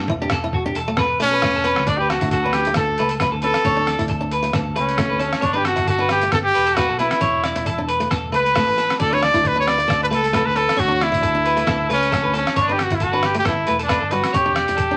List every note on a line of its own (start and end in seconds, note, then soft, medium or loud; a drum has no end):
0.08 0.71 E1 loud
0.08 0.16 E4 medium
0.08 kick loud
0.22 0.34 D4 medium
0.22 0.31 G4 medium
0.30 0.53 A4 medium
0.30 kick medium
0.30 cross-stick medium
0.30 closed hi-hat soft
0.44 0.56 E4 medium
0.53 0.65 F#4 medium
0.53 kick medium
0.66 0.78 D4 medium
0.66 0.75 G4 medium
0.75 1.16 E1 medium
0.75 0.97 A4 medium
0.75 closed hi-hat soft
0.88 0.93 A3 medium
0.97 1.09 B3 medium
0.97 1.19 B4 medium
0.97 kick medium
0.97 cross-stick medium
1.20 1.41 B1 medium
1.20 1.32 A3 medium
1.20 1.88 C#4 loud
1.20 1.31 A4 medium
1.20 closed hi-hat soft
1.33 1.53 B4 medium
1.42 1.73 E1 loud
1.42 1.55 A3 medium
1.42 kick medium
1.42 cross-stick medium
1.56 1.65 A4 medium
1.64 1.77 B3 medium
1.64 1.86 B4 medium
1.64 closed hi-hat soft
1.76 1.86 C#2 medium
1.76 cross-stick medium
1.86 2.18 D2 medium
1.86 1.99 D4 medium
1.86 1.99 D5 medium
1.86 muted steel-string acoustic guitar stroke medium
1.86 kick medium
1.86 closed hi-hat soft
1.98 2.11 G4 medium
1.98 2.09 B4 medium
2.09 2.30 F#4 medium
2.09 2.31 A4 medium
2.09 cross-stick medium
2.09 closed hi-hat soft
2.21 2.72 D2 medium
2.21 2.34 E4 medium
2.21 kick medium
2.21 closed hi-hat soft
2.31 2.55 F#4 medium
2.31 2.43 A4 medium
2.31 kick medium
2.31 closed hi-hat soft
2.44 2.57 D4 medium
2.44 2.65 B4 medium
2.53 2.76 G4 medium
2.53 cross-stick medium
2.53 closed hi-hat soft
2.65 2.72 A3 medium
2.65 closed hi-hat soft
2.74 2.96 D2 medium
2.74 2.89 B3 medium
2.74 3.18 A4 medium
2.74 2.97 A4 medium
2.74 kick medium
2.74 cross-stick medium
2.74 closed hi-hat medium
2.98 3.30 C#2 medium
2.98 3.12 A3 medium
2.98 3.10 B4 medium
2.98 closed hi-hat soft
3.09 3.20 A4 medium
3.09 closed hi-hat medium
3.20 3.34 A3 medium
3.20 3.32 B4 medium
3.20 kick medium
3.20 cross-stick medium
3.20 closed hi-hat medium
3.32 3.52 D2 medium
3.32 3.42 A4 medium
3.42 3.56 C#4 medium
3.42 4.06 A4 loud
3.42 3.64 B4 medium
3.42 closed hi-hat soft
3.54 cross-stick medium
3.54 closed hi-hat soft
3.65 3.96 D2 medium
3.65 3.72 C#4 medium
3.65 3.86 C#5 medium
3.65 kick medium
3.65 closed hi-hat soft
3.77 3.89 D4 medium
3.87 4.08 D5 medium
3.87 cross-stick medium
3.87 closed hi-hat soft
3.99 4.50 D2 medium
3.99 4.11 E4 medium
3.99 kick medium
3.99 closed hi-hat soft
4.08 4.31 A4 medium
4.08 kick medium
4.08 closed hi-hat soft
4.21 4.33 D4 medium
4.31 4.53 B4 medium
4.31 closed hi-hat soft
4.43 4.49 A3 medium
4.43 closed hi-hat soft
4.53 4.74 D2 medium
4.53 4.66 B3 medium
4.53 4.75 A4 medium
4.53 kick medium
4.53 cross-stick medium
4.53 closed hi-hat soft
4.76 5.08 C#2 medium
4.76 4.89 A3 medium
4.76 4.97 B4 medium
4.76 closed hi-hat soft
4.80 5.46 C#4 medium
4.89 closed hi-hat soft
4.98 5.11 A3 medium
4.98 kick medium
4.98 cross-stick medium
4.98 closed hi-hat medium
5.10 5.31 D2 medium
5.10 5.19 B4 medium
5.19 5.32 C#4 medium
5.19 5.41 A4 medium
5.19 closed hi-hat soft
5.33 cross-stick medium
5.33 closed hi-hat soft
5.41 5.74 G1 medium
5.41 5.49 C#4 medium
5.41 5.58 D4 medium
5.41 5.53 C#5 medium
5.41 kick medium
5.41 closed hi-hat soft
5.53 5.67 D4 medium
5.53 5.66 G4 medium
5.53 5.64 B4 medium
5.65 5.87 F#4 medium
5.65 5.86 A4 medium
5.65 cross-stick medium
5.65 closed hi-hat soft
5.76 6.28 G1 medium
5.76 5.89 E4 medium
5.76 kick medium
5.76 closed hi-hat soft
5.87 6.09 F#4 medium
5.87 5.99 A4 medium
5.87 kick medium
5.87 closed hi-hat medium
5.99 6.11 D4 medium
5.99 6.21 B4 medium
6.09 6.32 G4 medium
6.09 cross-stick medium
6.09 closed hi-hat soft
6.22 6.28 A3 medium
6.22 closed hi-hat soft
6.31 6.53 G1 medium
6.31 6.45 B3 medium
6.31 6.38 A4 medium
6.31 muted clean electric guitar stroke medium
6.31 kick medium
6.31 cross-stick medium
6.31 closed hi-hat medium
6.44 6.76 G4 loud
6.54 6.87 E1 medium
6.54 6.66 B4 medium
6.54 closed hi-hat soft
6.66 6.76 A4 medium
6.66 closed hi-hat medium
6.75 6.90 A3 medium
6.75 6.98 F#4 medium
6.75 6.88 B4 medium
6.75 kick medium
6.75 cross-stick medium
6.75 closed hi-hat medium
6.89 7.10 B1 medium
6.89 6.98 A4 medium
6.99 7.12 B3 medium
6.99 7.85 E4 medium
6.99 7.20 B4 medium
6.99 closed hi-hat soft
7.11 cross-stick medium
7.11 closed hi-hat soft
7.21 7.53 E1 medium
7.21 7.28 C#4 medium
7.21 7.43 C#5 medium
7.21 kick medium
7.21 closed hi-hat soft
7.44 7.65 D5 medium
7.44 cross-stick medium
7.44 closed hi-hat soft
7.56 8.07 E1 medium
7.56 muted steel-string acoustic guitar stroke medium
7.56 closed hi-hat soft
7.66 7.88 A4 medium
7.66 kick medium
7.66 closed hi-hat medium
7.78 7.91 D4 medium
7.89 8.10 B4 medium
7.89 closed hi-hat soft
8.00 8.06 A3 medium
8.00 closed hi-hat soft
8.11 8.31 E1 medium
8.11 8.24 B3 medium
8.11 8.32 A4 medium
8.11 kick medium
8.11 cross-stick medium
8.11 closed hi-hat soft
8.32 8.64 C#2 medium
8.32 8.45 A3 medium
8.32 8.54 B4 medium
8.32 8.97 B4 loud
8.32 closed hi-hat soft
8.46 closed hi-hat soft
8.55 8.68 A3 medium
8.55 8.67 A4 medium
8.55 kick medium
8.55 cross-stick medium
8.55 closed hi-hat medium
8.67 8.87 A1 medium
8.67 8.77 B4 medium
8.78 8.90 B3 medium
8.78 8.99 A4 medium
8.78 closed hi-hat soft
8.90 cross-stick medium
8.90 closed hi-hat soft
8.99 9.31 D2 medium
8.99 9.06 C#4 medium
8.99 9.15 A4 medium
8.99 9.11 D5 medium
8.99 kick medium
8.99 closed hi-hat soft
9.11 9.25 D4 medium
9.11 9.21 B4 medium
9.11 9.24 C#5 medium
9.21 9.42 A4 medium
9.21 9.49 D5 medium
9.21 cross-stick medium
9.21 closed hi-hat soft
9.34 9.85 D2 medium
9.34 9.46 E4 medium
9.34 kick medium
9.34 closed hi-hat soft
9.43 9.58 B4 medium
9.43 muted clean electric guitar stroke medium
9.43 kick medium
9.43 closed hi-hat medium
9.55 9.68 D4 medium
9.55 9.77 B4 medium
9.60 9.69 C#5 medium
9.67 10.01 D5 loud
9.67 cross-stick medium
9.67 closed hi-hat soft
9.78 9.84 A3 medium
9.78 closed hi-hat soft
9.88 10.09 D2 medium
9.88 10.00 B3 medium
9.88 10.10 A4 medium
9.88 kick medium
9.88 cross-stick medium
9.88 closed hi-hat soft
10.03 10.07 B4 loud
10.10 10.42 C#2 medium
10.10 10.24 A3 medium
10.10 10.34 A4 loud
10.10 10.22 B4 medium
10.10 closed hi-hat medium
10.23 10.32 A4 medium
10.23 closed hi-hat soft
10.33 10.46 A3 medium
10.33 10.47 A4 medium
10.33 10.45 B4 medium
10.33 kick medium
10.33 cross-stick medium
10.33 closed hi-hat medium
10.45 10.66 D2 medium
10.45 10.55 A4 medium
10.45 10.58 B4 loud
10.56 10.81 A4 medium
10.56 10.77 B4 medium
10.56 muted steel-string acoustic guitar stroke medium
10.56 closed hi-hat soft
10.69 cross-stick medium
10.69 closed hi-hat soft
10.77 11.09 D2 medium
10.77 10.84 C#4 medium
10.77 11.04 F#4 medium
10.77 10.99 C#5 medium
10.77 kick medium
10.77 closed hi-hat soft
10.88 11.01 D4 medium
11.01 11.91 E4 medium
11.01 11.22 D5 medium
11.01 cross-stick medium
11.01 closed hi-hat soft
11.12 11.64 D2 medium
11.12 11.24 E4 medium
11.12 kick medium
11.12 closed hi-hat medium
11.22 11.44 A4 medium
11.22 kick medium
11.22 closed hi-hat soft
11.35 11.47 D4 medium
11.46 11.66 B4 medium
11.46 closed hi-hat soft
11.57 11.63 A3 medium
11.57 closed hi-hat soft
11.67 11.87 D2 medium
11.67 11.79 B3 medium
11.67 11.88 A4 medium
11.67 kick medium
11.67 cross-stick medium
11.67 closed hi-hat soft
11.89 12.21 C#2 medium
11.89 12.02 A3 medium
11.89 12.33 C#4 medium
11.89 12.10 B4 medium
11.89 closed hi-hat soft
12.03 closed hi-hat soft
12.11 12.25 A3 medium
12.11 12.23 A4 medium
12.11 kick medium
12.11 cross-stick medium
12.11 closed hi-hat medium
12.24 12.44 D2 medium
12.24 12.33 B4 medium
12.34 12.46 C#4 medium
12.34 12.63 C#4 medium
12.34 12.55 A4 medium
12.34 closed hi-hat soft
12.47 cross-stick medium
12.47 closed hi-hat soft
12.56 12.87 G1 medium
12.56 12.63 C#4 medium
12.56 12.68 C#5 loud
12.56 kick medium
12.56 closed hi-hat soft
12.62 12.74 D4 medium
12.68 12.81 D4 medium
12.68 12.78 B4 medium
12.73 12.85 G4 medium
12.78 muted clean electric guitar stroke medium
12.78 cross-stick medium
12.78 closed hi-hat soft
12.84 12.96 F#4 medium
12.90 13.41 G1 medium
12.90 13.04 E4 medium
12.90 kick medium
12.90 closed hi-hat soft
12.95 13.05 E4 medium
13.00 13.27 F#4 medium
13.00 13.12 A4 medium
13.00 kick medium
13.00 closed hi-hat soft
13.13 13.25 D4 medium
13.13 13.34 B4 medium
13.23 13.36 G4 medium
13.23 cross-stick medium
13.23 closed hi-hat soft
13.35 13.41 A3 medium
13.35 closed hi-hat soft
13.39 13.43 G4 medium
13.45 13.66 G1 medium
13.45 13.57 B3 medium
13.45 13.78 E4 medium
13.45 13.66 A4 medium
13.45 kick medium
13.45 cross-stick medium
13.45 closed hi-hat soft
13.67 13.99 E1 medium
13.67 13.80 A3 medium
13.67 13.79 B4 medium
13.67 closed hi-hat soft
13.79 13.88 A4 medium
13.79 closed hi-hat medium
13.83 14.14 D4 medium
13.88 14.02 A3 medium
13.88 14.00 B4 medium
13.88 kick medium
13.88 cross-stick medium
13.88 closed hi-hat medium
14.00 14.22 G1 medium
14.00 14.10 A4 medium
14.11 14.25 G3 medium
14.11 14.38 F#4 medium
14.11 14.32 B4 medium
14.11 closed hi-hat soft
14.24 cross-stick medium
14.24 closed hi-hat soft
14.33 14.65 E1 medium
14.33 14.41 C#4 medium
14.33 14.97 G4 medium
14.33 14.54 C#5 medium
14.33 kick medium
14.33 closed hi-hat medium
14.46 14.58 D4 medium
14.55 14.76 D5 medium
14.55 cross-stick medium
14.55 closed hi-hat medium
14.68 14.97 E1 medium
14.68 muted steel-string acoustic guitar stroke medium
14.68 closed hi-hat soft
14.77 14.97 A4 medium
14.77 kick medium
14.77 closed hi-hat medium
14.91 14.97 D4 medium